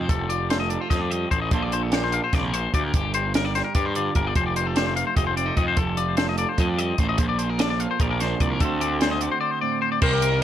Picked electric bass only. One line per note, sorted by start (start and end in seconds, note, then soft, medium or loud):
0.09 0.77 F1 medium
0.91 1.24 F2 medium
1.32 1.48 A1 medium
1.51 2.19 A#1 medium
2.33 2.67 A#1 medium
2.74 2.90 D2 medium
2.94 3.61 G1 medium
3.75 4.09 G2 medium
4.16 4.32 G1 medium
4.36 5.03 F1 medium
5.17 5.50 F1 medium
5.57 5.74 F2 medium
5.77 6.44 F1 medium
6.58 6.92 F2 medium
6.99 7.16 A1 medium
7.19 7.86 A#1 medium
8.00 8.33 A#1 medium
8.40 8.57 C2 medium
8.61 9.27 D2 medium
10.02 10.43 C2 medium